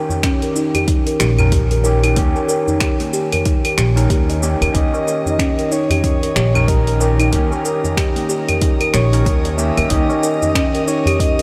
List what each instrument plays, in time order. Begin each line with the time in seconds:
Already playing: tine electric piano D#3 C#4 G4 A#4
0.09 kalimba D#4, tabla ge, shaker
0.23 kalimba C#4, finger snap, kick, open hi-hat, shaker
0.42 kalimba A#4, open hi-hat, shaker
0.55 kalimba D#4, tabla tin, shaker
0.74 kalimba G4, open hi-hat, tabla tin, tabla ge, claves, shaker
0.88 kalimba D#4, kick, open hi-hat, shaker
1.07 kalimba A#4, open hi-hat, shaker
1.20 upright bass A#1, kalimba G4, finger snap, shaker
1.38 tine electric piano D#3 C#4 A#4, kalimba D#4, tabla ge, claves, shaker
1.52 kalimba G4, kick, open hi-hat, shaker
1.71 kalimba A#4, open hi-hat, shaker
1.84 tine electric piano D#3 C#4 G4, kalimba A#4, shaker
2.03 kalimba D#4, open hi-hat, tabla tin, claves, shaker
2.15 upright bass D#2, tine electric piano D#3 C#4 G4, kalimba D#4, kick, open hi-hat, shaker
2.35 kalimba A#4, tabla na, tabla tin, shaker
2.48 kalimba A#4, shaker
2.67 kalimba D#4, tabla ge, shaker
2.80 kalimba G4, finger snap, kick, open hi-hat, shaker
3.00 kalimba A#3, open hi-hat, shaker
3.13 kalimba G4, tabla tin, shaker
3.32 kalimba A#4, open hi-hat, tabla na, tabla tin, tabla ge, claves, shaker
3.45 kalimba D#4, kick, open hi-hat, shaker
3.65 kalimba A#4, open hi-hat, claves, shaker
3.78 upright bass A#1, kalimba G4, finger snap, shaker
3.95 tine electric piano D#3 C#4 A#4, kalimba D#4, open hi-hat, tabla tin, shaker
4.10 upright bass D#2, kalimba G4, kick, open hi-hat, shaker
4.29 kalimba D#5, open hi-hat, tabla tin, shaker
4.41 tine electric piano D#3 C#4 G4, kalimba A#3, shaker
4.61 upright bass D#2, kalimba A#4, open hi-hat, claves, shaker
4.72 upright bass D#2, tine electric piano D#3 C#4 G4, synth texture D#4 D#6, kalimba D#4, soft synth lead D#5, kick, open hi-hat, shaker
4.94 kalimba A#4, tabla na, tabla tin, shaker
5.07 kalimba A#4, tabla na, shaker
5.26 kalimba D#4, tabla ge, shaker
5.39 kalimba C#4, finger snap, kick, open hi-hat, shaker
5.59 kalimba A#4, open hi-hat, shaker
5.71 kalimba D#4, soft synth lead C#5, tabla tin, shaker
5.90 kalimba G4, open hi-hat, tabla tin, tabla ge, claves, shaker
6.04 kalimba D#4, soft synth lead C#5, kick, open hi-hat, shaker
6.23 kalimba A#4, open hi-hat, shaker
6.36 upright bass A#1, kalimba G4, finger snap, shaker
6.54 tine electric piano D#3 C#4 A#4, kalimba D#4, tabla ge, claves, shaker
6.68 kalimba G4, soft synth lead A#4, kick, open hi-hat, shaker
6.87 kalimba A#4, open hi-hat, shaker
7.00 tine electric piano D#3 C#4 G4, kalimba A#4, shaker
7.20 kalimba D#4, open hi-hat, tabla tin, claves, shaker
7.31 upright bass D#2, tine electric piano D#3 C#4, kalimba D#4, soft synth lead A#4, kick, open hi-hat, shaker
7.35 tine electric piano G4
7.51 kalimba A#4, tabla na, tabla tin, shaker
7.65 kalimba A#4, shaker
7.84 kalimba D#4, tabla ge, shaker
7.97 kalimba G4, finger snap, kick, open hi-hat, shaker
8.16 kalimba A#3, open hi-hat, shaker
8.29 kalimba G4, tabla tin, shaker
8.48 kalimba A#4, open hi-hat, tabla na, tabla tin, tabla ge, claves, shaker
8.61 kalimba D#4, kick, open hi-hat, shaker
8.80 kalimba A#4, open hi-hat, claves, shaker
8.93 upright bass A#1, kalimba G4, soft synth lead C#5, finger snap, shaker
9.12 tine electric piano D#3 C#4 A#4, kalimba D#4, open hi-hat, tabla tin, shaker
9.25 upright bass D#2, kalimba G4, kick, open hi-hat, shaker
9.45 kalimba D#5, open hi-hat, tabla tin, shaker
9.57 tine electric piano D#3 C#4 G4, kalimba A#3, soft synth lead E5, shaker
9.77 upright bass D#2, kalimba A#4, open hi-hat, claves, shaker
9.89 upright bass D#2, tine electric piano D#3 C#4, kalimba D#4, soft synth lead D#5, kick, open hi-hat, shaker
9.93 tine electric piano G4
10.09 kalimba A#4, tabla na, tabla tin, shaker
10.23 kalimba A#4, tabla na, shaker
10.42 kalimba D#4, tabla ge, shaker
10.55 kalimba C#4, finger snap, kick, open hi-hat, shaker
10.75 kalimba A#4, open hi-hat, shaker
10.88 kalimba D#4, soft synth lead C#5, tabla tin, shaker
11.06 kalimba G4, open hi-hat, tabla tin, tabla ge, claves, shaker
11.20 kalimba D#4, soft synth lead D#5, kick, open hi-hat, shaker
11.39 kalimba A#4